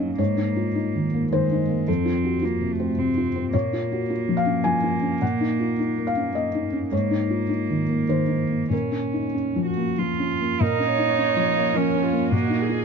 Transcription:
Already playing: A#2 F#3 A#3 D#4 F4 A#4 D#5 F5
0.00 C#4
0.18 G#2 A#3 C#5
0.37 D#4
0.56 F4
0.75 D#4
0.95 D#3
1.14 A#3
1.32 D#3 G#3 C5
1.51 D#4
1.69 A#3
1.88 F2 C4 A4
2.05 F4
2.25 F#4
2.42 A#3 F4
2.61 C3
2.72 A3
2.79 C4
2.98 C3 C4
3.17 F4
3.36 C4
3.53 A#2 A#3 C#5
3.73 F4
3.92 F#4
4.10 F4
4.29 F3
4.37 F5
4.46 C#4
4.64 F3 G#5
4.84 F4
5.02 C#4
5.22 A#2 F#5
5.41 D#4
5.60 F4
5.79 D#4
5.98 A#3
6.07 F5
6.17 C#4
6.35 A#3 D#5
6.55 D#4
6.73 C#4
6.92 G#2 A#3 C#5
7.11 D#4
7.30 F4
7.49 D#4
7.70 D#3
7.89 A#3
8.08 D#3 C5
8.28 D#4
8.49 A#3
8.70 A#2 C#4 A#4
8.91 C#4
9.13 D#4
9.34 C#4
9.56 F3
9.66 F#4
9.77 A#3
9.98 F3 F4
10.19 C#4
10.41 A#3
10.60 A#2 A#3 D#4 F4 A#4 C#5
10.80 C#4
10.89 C#5
10.98 D#4
11.18 C#4
11.36 F3
11.56 A#3
11.74 F3 C#4 A#4
11.94 C#4
12.04 F4
12.13 A#3
12.32 A#2 A#3 F#4 D#5
12.50 D#4
12.62 G#4
12.69 F4

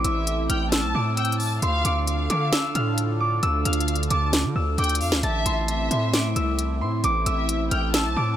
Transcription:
Already playing: A3 C4 E4 C6 D6
0.04 A1 E5 E6, closed hi-hat
0.27 closed hi-hat
0.49 A1 G5 F6, closed hi-hat
0.72 A5 E6, snare, closed hi-hat
0.83 B1
0.95 A2 D6
1.17 G5 E6, closed hi-hat
1.25 closed hi-hat
1.32 closed hi-hat
1.40 A5, open hi-hat
1.62 D2 D3 D4 F4 A4 F5 C6, closed hi-hat
1.85 D2 D6, closed hi-hat
2.07 F5, closed hi-hat
2.30 D3 D6, closed hi-hat
2.53 E6, snare, closed hi-hat
2.75 A2 F6, closed hi-hat
2.98 closed hi-hat
3.20 D6
3.43 D2 E6, closed hi-hat
3.65 D2 F5 F6, closed hi-hat
3.73 closed hi-hat
3.81 closed hi-hat
3.88 closed hi-hat
3.96 closed hi-hat
4.03 closed hi-hat
4.10 D2 A5 D6, closed hi-hat
4.33 snare, closed hi-hat
4.44 D3
4.56 D2 E6
4.78 D2 G5 D6, closed hi-hat
4.84 closed hi-hat
4.89 closed hi-hat
4.95 closed hi-hat
5.01 F2 F5, open hi-hat
5.12 D2, snare
5.23 A1 A3 C4 E4 E5 A5, closed hi-hat
5.46 A1 C6, closed hi-hat
5.68 E5, closed hi-hat
5.91 A2 C6, closed hi-hat
6.14 D6, snare, closed hi-hat
6.36 C2 E6, closed hi-hat
6.59 closed hi-hat
6.81 A2 C6
7.04 A1 D6, closed hi-hat
7.26 A1 E5 E6, closed hi-hat
7.49 closed hi-hat
7.71 A1 G5 F6, closed hi-hat
7.94 A5 E6, snare, closed hi-hat
8.05 B1
8.16 A2 D6

